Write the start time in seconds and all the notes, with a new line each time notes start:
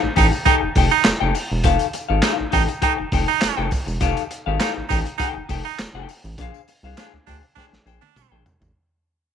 0.02 A1, muted clean electric guitar stroke
0.16 A1 D#4 G4 A4 G5, kick, open hi-hat, tambourine
0.32 muted clean electric guitar stroke, tambourine
0.45 D#4 G4 A4 G5, kick, closed hi-hat, tambourine
0.62 F1, muted clean electric guitar stroke
0.75 F1 D#4 G4 A4 G5, kick, open hi-hat, tambourine
0.91 D#4, muted clean electric guitar stroke, tambourine
1.04 F1, muted clean electric guitar stroke, snare, clap, closed hi-hat, tambourine
1.20 F1 D#4 G4 A4 G5
1.35 muted clean electric guitar stroke, open hi-hat, tambourine
1.51 E1, muted clean electric guitar stroke
1.64 F1 D#4 G4 A4 F5, kick, closed hi-hat, tambourine
1.79 closed hi-hat, tambourine
1.93 muted clean electric guitar stroke, closed hi-hat, tambourine
2.09 G#1 D#4 G4 A4 F5
2.22 D#4 G4 A4 F5, snare, clap, closed hi-hat, tambourine
2.38 A1, muted clean electric guitar stroke
2.51 A1 D#4 G4 A4 G5, kick, open hi-hat, tambourine
2.69 muted clean electric guitar stroke, closed hi-hat, tambourine
2.82 D#4 G4 A4 G5, kick, closed hi-hat, tambourine
2.98 F1, muted clean electric guitar stroke
3.12 F1 D#4 G4 A4 G5, kick, open hi-hat, tambourine
3.28 D#4, muted clean electric guitar stroke
3.41 F1, muted clean electric guitar stroke, snare, clap, closed hi-hat, tambourine
3.57 F1 D#4 G4 A4 G5
3.71 muted clean electric guitar stroke, kick, open hi-hat, tambourine
3.87 E1, muted clean electric guitar stroke, tambourine
4.01 F1 D#4 G4 A4 F5, kick, closed hi-hat, tambourine
4.17 closed hi-hat, tambourine
4.31 muted clean electric guitar stroke, closed hi-hat, tambourine
4.46 G#1 D#4 G4 A4 F5
4.60 D#4 G4 A4 F5, snare, clap, closed hi-hat, tambourine
4.75 A1, muted clean electric guitar stroke
4.89 A1 D#4 G4 A4 G5, kick, open hi-hat, tambourine
5.06 muted clean electric guitar stroke, closed hi-hat, tambourine
5.18 D#4 G4 A4 G5, kick, closed hi-hat, tambourine
5.35 F1, muted clean electric guitar stroke
5.49 F1 D#4 G4 A4 G5, kick, open hi-hat, tambourine
5.65 D#4, muted clean electric guitar stroke
5.79 F1, muted clean electric guitar stroke, snare, clap, closed hi-hat, tambourine
5.94 F1 D#4 G4 A4 G5
6.09 muted clean electric guitar stroke, open hi-hat, tambourine
6.24 A1, muted clean electric guitar stroke, tambourine
6.38 A#1 D4 G#4 C5 F5, kick, closed hi-hat, tambourine
6.54 tambourine
6.68 muted clean electric guitar stroke, open hi-hat, tambourine
6.83 C2 D4 G#4 C5 F5
6.97 D4 G#4 C5 F5, snare, clap, closed hi-hat, tambourine
7.13 D2, muted clean electric guitar stroke
7.26 D2 D4 G#4 C5 G5, kick, open hi-hat, tambourine
7.43 muted clean electric guitar stroke
7.55 D4 G#4 C5 G5, kick, snare, tambourine
7.72 A#1, muted clean electric guitar stroke, snare
7.86 A#1 D4 G#4 C5 G5, tambourine
8.01 D4, muted clean electric guitar stroke, high tom
8.16 A#1, muted clean electric guitar stroke, mid tom, tambourine
8.32 A#1 D4 G#4 C5 G5
8.45 muted clean electric guitar stroke, floor tom, tambourine
8.60 A1, muted clean electric guitar stroke, floor tom, tambourine